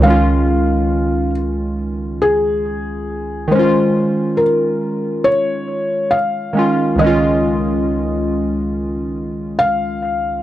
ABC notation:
X:1
M:4/4
L:1/8
Q:"Swing 16ths" 1/4=69
K:Db
V:1 name="Felt piano"
f3 z2 A3 | c2 B2 d2 f2 | e6 f2 |]
V:2 name="Synth keys" clef=bass
[D,,E,A,DF]8 | [E,A,DF]6- [E,A,DF] [E,A,DF] | [D,,E,A,DF]8 |]